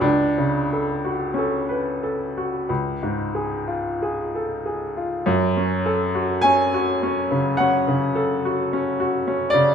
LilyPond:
\new Staff \with { instrumentName = "Upright piano" } { \time 4/4 \key fis \minor \tempo 4 = 51 << { d'4 cis'2 r4 | r4 gis''4 fis''4.~ fis''16 d''16 | } \\ { cis,16 cis16 a'16 fis'16 a'16 b'16 a'16 fis'16 cis,16 gis,16 gis'16 eis'16 gis'16 a'16 gis'16 eis'16 | fis,16 cis'16 a'16 fis'16 cis'16 fis'16 cis'16 cis16 cis'16 cis16 a'16 fis'16 cis'16 fis'16 cis'16 cis16 | } >> }